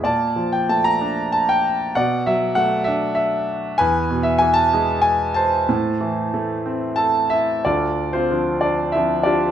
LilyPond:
<<
  \new Staff \with { instrumentName = "Grand piano" } { \time 3/4 \key a \minor \tempo 4 = 94 << { a''8. g''16 a''16 bes''8. a''16 g''8. | fis''8 e''8 fis''8 e''8 e''8. r16 | gis''8. e''16 gis''16 a''8. gis''8 a''8~ | a''2 a''8 e''8 |
\key d \minor d''8. c''8. d''8 e''8 d''8 | } \\ { d''4. r4. | d''4. r4. | b'4. r4 c''8~ | c''2 a'8 e'8 |
<d' f' a'>8. <c' f'>8. d'8 e'8 <d' f' g'>8 | } >> }
  \new Staff \with { instrumentName = "Grand piano" } { \clef bass \time 3/4 \key a \minor bes,8 f8 a8 d'4. | b,8 fis8 a8 d'4. | e,8 b,8 e8 gis4. | a,8 e8 a8 c'4. |
\key d \minor d,4 <f c' d'>4 <f c' d'>4 | }
>>